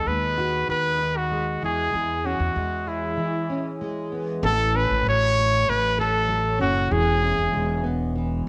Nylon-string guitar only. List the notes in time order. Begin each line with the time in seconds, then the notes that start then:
Already playing: D#3 B3 D#4 F#4
0.06 G#3
0.38 F#4
0.68 D#3
1.00 D#4
1.31 G#3
1.62 E3
1.93 E3 G#4
2.24 C#4
2.55 G#3
2.87 G#4
3.17 E3
3.50 C#4
3.81 G#3
4.12 B3
4.43 A2 A4
4.74 C#4
5.05 F#3
5.37 A3
5.67 A2
5.99 A4
6.28 F#3
6.59 C#4
6.91 E3 G#4
7.23 C#4
7.52 G#3
7.84 B3
8.16 E3